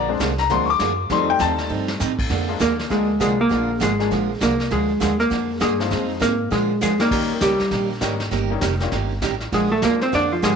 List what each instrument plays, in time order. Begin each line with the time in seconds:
Already playing: upright bass A#1, steel-string acoustic guitar F3 A#3 D4 G#4
0.09 upright piano G#3 C4 D4
0.20 upright bass C2, steel-string acoustic guitar D3 F3 A#3 D4 G#4, kick, snare, hi-hat pedal
0.38 upright piano A#5, snare
0.50 upright bass D2, steel-string acoustic guitar D3 F3 A#3 D4 G#4, upright piano G#3 C4 D4 C6, brush sweep, kick, snare
0.66 upright piano C#6
0.70 upright piano D6
0.79 upright bass F#2, steel-string acoustic guitar D3 F3 A#3 D4 G#4, kick, snare, hi-hat pedal
1.10 upright bass F2, steel-string acoustic guitar F3 C4 D#4 A4, upright piano G3 A3 D#4 C6, brush sweep, kick, snare
1.30 upright piano G5
1.39 upright bass D#2, steel-string acoustic guitar F3 C4 D#4 A4, upright piano A5, kick, snare, hi-hat pedal
1.59 snare
1.69 upright bass G2, steel-string acoustic guitar F3 C4 D#4 A4
1.88 snare
2.00 upright bass A2, steel-string acoustic guitar F3 C4 D#4 A4, snare, hi-hat pedal
2.19 kick, crash
2.29 upright bass F2, steel-string acoustic guitar D3 F3 A#3 D4 G#4, brush sweep, kick, snare
2.48 upright piano F3 G#3 A#3 D4 F4
2.59 upright bass D#2, steel-string acoustic guitar D3 F3 A#3 D4 G#4, hollow-body jazz guitar A#3 A#4, kick, snare, hi-hat pedal
2.79 snare
2.89 upright bass D2, steel-string acoustic guitar D3 F3 A#3 D4 G#4, upright piano F3 G#3 A#3 D4 F4, hollow-body jazz guitar G#3 G#4, brush sweep, kick, snare
3.20 upright bass C2, steel-string acoustic guitar D3 F3 A#3 D4 G#4, upright piano F3 G#3 A#3 D4 F4, hollow-body jazz guitar G#3 G#4, kick, snare, hi-hat pedal
3.41 hollow-body jazz guitar A#3 A#4
3.49 upright bass A#1, steel-string acoustic guitar D3 F3 A#3 D4 G#4, upright piano F3 G#3 A#3 D4 F4, brush sweep, kick, snare
3.80 upright bass G#1, steel-string acoustic guitar D3 F3 A#3 D4 G#4, hollow-body jazz guitar G#3 G#4, kick, snare, hi-hat pedal
3.99 upright piano F3 G#3 A#3 D4 G#4, snare
4.11 upright bass A#1, steel-string acoustic guitar D3 F3 A#3 D4 G#4, brush sweep, kick, snare
4.40 upright bass C2, steel-string acoustic guitar D3 F3 A#3 D4 G#4, hollow-body jazz guitar A#3 A#4, kick, snare, hi-hat pedal
4.60 snare
4.70 upright bass D2, steel-string acoustic guitar D3 F3 A#3 D4 G#4, hollow-body jazz guitar G#3 G#4, brush sweep, kick, snare
5.00 upright bass D#2, steel-string acoustic guitar D3 F3 A#3 D4 G#4, hollow-body jazz guitar G#3 G#4, kick, snare, hi-hat pedal
5.20 hollow-body jazz guitar A#3 A#4, snare
5.30 upright bass F2, steel-string acoustic guitar D3 F3 A#3 D4 G#4, brush sweep, kick, snare
5.60 upright bass G2, steel-string acoustic guitar D3 F3 A#3 D4 G#4, hollow-body jazz guitar A#3 G#4, kick, snare, hi-hat pedal
5.79 upright piano F3 G#3 C4 D#4 F4, snare
5.90 upright bass F2, steel-string acoustic guitar F3 C4 D#4 G#4, brush sweep, kick, snare
6.20 upright bass G#2, steel-string acoustic guitar F3 C4 D#4 G#4, hollow-body jazz guitar A#3 A#4, kick, snare, hi-hat pedal
6.51 upright bass A#2, steel-string acoustic guitar D3 F3 A#3 D4 G#4, hollow-body jazz guitar G#3 G#4, brush sweep, kick, snare
6.81 upright bass F2, steel-string acoustic guitar D3 F3 A#3 D4 G#4, hollow-body jazz guitar G#3 G#4, snare, hi-hat pedal
7.00 upright piano D#3 G3 A#3 C#4 D#4, hollow-body jazz guitar A#3 A#4, snare
7.11 upright bass D#2, steel-string acoustic guitar D#3 A#3 C#4 G4 A#4, brush sweep, kick, snare, crash
7.30 muted upright bass stroke
7.41 upright bass C#2, steel-string acoustic guitar D#3 A#3 C#4 G4 A#4, upright piano D#3 G3 A#3 C#4 D#4, hollow-body jazz guitar G3 G4, kick, snare, hi-hat pedal
7.60 muted upright bass stroke, snare
7.71 upright bass A#1, steel-string acoustic guitar D#3 A#3 C#4 G4 A#4, brush sweep, kick, snare
8.01 upright bass G#1, upright piano D#3 G3 A#3 C#4 D#4, steel-string acoustic guitar D#3 A#3 C#4 G4 A#4, kick, snare, hi-hat pedal
8.20 snare
8.31 upright bass G1, steel-string acoustic guitar D#3 A#3 C#4 G4 A#4, brush sweep, kick, snare
8.50 upright piano D#3 G3 A#3 C#4 D#4
8.61 upright bass F1, steel-string acoustic guitar D#3 A#3 C#4 G4 A#4, kick, snare, hi-hat pedal
8.80 upright piano D#3 G3 A#3 C#4 F4, snare
8.92 upright bass G1, steel-string acoustic guitar D#3 A#3 C#4 G4 A#4, brush sweep, kick, snare
9.22 upright bass A1, steel-string acoustic guitar D#3 A#3 C#4 G4 A#4, kick, snare, hi-hat pedal
9.41 snare
9.52 upright bass A#1, steel-string acoustic guitar D3 F3 A#3 D4 G#4, hollow-body jazz guitar G#3 G#4, brush sweep, kick, snare
9.71 hollow-body jazz guitar A3 A4
9.82 upright bass D2, steel-string acoustic guitar D3 F3 A#3 D4 G#4, upright piano F3 G#3 A#3 D4 F4, hollow-body jazz guitar A#3 A#4, kick, snare, hi-hat pedal
10.01 hollow-body jazz guitar C4 C5, snare
10.12 upright bass F2, steel-string acoustic guitar D3 F3 A#3 D4 G#4, hollow-body jazz guitar D4 D5, brush sweep, kick, snare
10.32 hollow-body jazz guitar F3 F4
10.42 upright bass G#2, steel-string acoustic guitar D3 F3 A#3 D4 G#4, upright piano F3 G#3 A#3 D4 G4, hollow-body jazz guitar G#3 G#4, kick, snare, hi-hat pedal